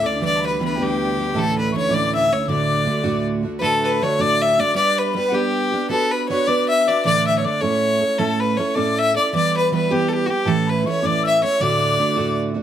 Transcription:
Already playing: D2 D3
0.02 C#4 E4 A4 D6
0.06 D5
0.20 E3 G3 B3 G4 D6
0.25 D5
0.36 A5
0.40 B5
0.47 B4
0.58 E3 G3 B3 G4 B5
0.64 B4
0.75 G3 B3 G4 G5
0.80 E3 G4
1.17 G3 B3 G4
1.34 A2 E3 A3 C#4 E4 A5
1.38 A4
1.58 B4
1.72 E3 A3 C#4 E4 C#6
1.78 C#5
1.89 A2 E3 A3 C#4 E4 D6
1.94 D5
2.14 E5 E6
2.31 A3 C#4 C#5
2.47 D2 A2 D3 A3 D4 F#4 D5 D6
2.86 D3 A3 D4 F#4
3.04 D2 A2 D3 A3 D4 F#4
3.43 D3 A3 D4 F#4
3.59 D2 A2 D3 A3 D4 A4 B4 A5
3.63 F#4
3.84 B4 B5
4.01 D3 A3 D4 F#4 C#5 C#6
4.19 D2 A2 D3 A3 D4 F#4 D5 D6
4.41 E5 E6
4.58 D3 A3 D4 F#4 D5 D6
4.75 G3 B3 D4 G4 D5 D6
4.98 B4 B5
5.14 G3 B3 D4 G4 B4
5.28 G4 F#5
5.33 G3 B3 D4 G4 G5
5.72 B3 D4 G4
5.89 B3 D4 F#4 A4 B4 A5
6.11 B4 B5
6.29 B3 D4 F#4 B4 C#5 C#6
6.47 B3 D4 F#4 B4 D5 D6
6.69 E5 E6
6.82 E5
6.87 D4 F#4 B4 D5 D6
7.05 A2 D3 E3 A3 D4 A4 D5 D6
7.26 E5 E6
7.39 C#5
7.44 D3 A3 D4 A4 D5 D6
7.61 A2 A3 C#4 E4 A4 C#5 C#6
8.00 C#4 E4 A4
8.18 A2 A3 C#4 E4 A4 A5
8.40 B4 B5
8.57 A3 C#4 E4 A4 C#5 C#6
8.75 A2 A3 C#4 E4 A4 D5 D6
8.98 E5 E6
9.14 C#4 E4 A4 D5 D6
9.32 E3 G3 B3 G4 D5 D6
9.56 B4 B5
9.72 E3 G3 B3 G4 B4 B5
9.90 E3 G3 B3 G4 G5
10.08 A4
10.13 G4
10.26 B3 F#4 G4 G5
10.30 G3 G4
10.45 A2 E3 A3 C#4 E4 A4 A5
10.67 B4 B5
10.84 E3 A3 C#4 E4 C#6
10.89 C#5
11.02 A2 E3 A3 C#4 E4 D5 D6
11.23 E5 E6
11.41 A3 C#4 E4 C#5 C#6
11.60 D2 A2 D3 A3 D4 F#4 D5 D6
11.98 D3 A3 D4 F#4
12.16 D2 A2 D3 A3 D4 F#4
12.54 D3 A3 D4 F#4

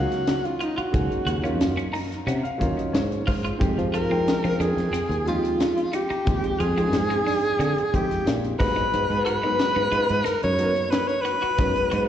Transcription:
Already playing: F#3 A#3 C#4 D#4 F#4 F5
0.12 snare, closed hi-hat
0.27 snare, closed hi-hat
0.45 F4, closed hi-hat
0.60 D#4 F4, closed hi-hat
0.77 F4 F#4, muted fretless electric bass stroke, closed hi-hat
0.92 C#2 F#3 A#3 C#4 D#4 G#4, kick, closed hi-hat
1.12 closed hi-hat
1.26 D#2 F#4, closed hi-hat
1.42 F#3 A#3 C#4 D#4 F4, closed hi-hat
1.59 F#2, snare, closed hi-hat
1.77 C#4, closed hi-hat
1.93 D#4 A#5, open hi-hat
2.12 snare, closed hi-hat
2.27 C3 C#4 F#5, closed hi-hat
2.43 F5, closed hi-hat
2.58 D#2 F#3 A#3 C#4 D#4 F4, kick, closed hi-hat
2.77 D#5, closed hi-hat
2.93 G#2 C#5, snare, closed hi-hat
3.12 closed hi-hat
3.27 G#2 F4 C5, kick, open hi-hat
3.45 F4, closed hi-hat
3.59 F2 F3 G#3 C4 D#4 G4, kick, closed hi-hat
3.78 F3, closed hi-hat
3.94 F4 A#4, closed hi-hat
4.10 F3 G#3 C4 D#4 G5
4.28 snare, closed hi-hat
4.44 F3 C4, closed hi-hat
4.60 F2 D4 G#4, closed hi-hat
4.77 F2, snare, closed hi-hat
4.93 C4, muted fretless electric bass stroke, closed hi-hat
5.09 D#2, closed hi-hat
5.26 F3 G#3 C4 D#4 F4 G4, closed hi-hat
5.45 closed hi-hat
5.60 snare, closed hi-hat
5.78 closed hi-hat
5.93 D#4 G4, closed hi-hat
6.10 D#4, muted fretless electric bass stroke, closed hi-hat
6.25 D#2 F3 G#3 C4 D#4 G4, kick, closed hi-hat
6.44 closed hi-hat
6.59 F2 F4 G#4, closed hi-hat
6.77 F3 G#3 C4 D#4 G#4, closed hi-hat
6.93 G#2, snare, closed hi-hat
7.10 C4, closed hi-hat
7.27 D4, open hi-hat
7.45 closed hi-hat
7.59 D3 C4, closed hi-hat
7.78 closed hi-hat
7.93 F2 F3 G#3 C4 D#4 G4, kick, closed hi-hat
8.11 snare, closed hi-hat
8.26 A#2, snare, closed hi-hat
8.44 closed hi-hat
8.59 G#2 F#3 G#3 B3 D#4 G#4 B4, kick, open hi-hat
8.76 D#4, closed hi-hat
8.94 G#2, closed hi-hat
9.10 G#2, closed hi-hat
9.25 F#4 B4, closed hi-hat
9.43 F#3 G#3 B3 D#4 B4
9.59 snare, closed hi-hat
9.76 G#2 D#4, closed hi-hat
9.92 G#2 F4, closed hi-hat
10.09 G#2, closed hi-hat
10.24 D#4 A#4, muted fretless electric bass stroke, closed hi-hat
10.43 F#2 C#5, closed hi-hat
10.59 F#3 A#3 B3 D#4 A#4, closed hi-hat
10.76 closed hi-hat
10.91 B4, snare, closed hi-hat
11.08 C#5, closed hi-hat
11.21 F#4 B4
11.25 closed hi-hat
11.42 F#4, muted fretless electric bass stroke, closed hi-hat
11.58 F#2 F#3 G#3 B3 D#4 B4, kick, closed hi-hat
11.76 closed hi-hat
11.91 G#2 F#4, closed hi-hat

